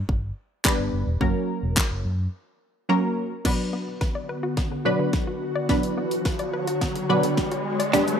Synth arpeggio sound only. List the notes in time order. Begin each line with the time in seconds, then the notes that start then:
3.45 B2
3.73 B3
4.01 B4
4.15 D5
4.29 B4
4.43 F#4
4.57 B3
4.71 D3
4.85 B2
4.99 D3
5.27 F#4
5.55 D5
5.69 B2
5.97 B3
6.25 B4
6.39 D5
6.53 B4
6.67 F#4
6.81 B3
6.95 D3
7.09 B2
7.23 D3
7.52 F#4
7.80 D5
7.93 G2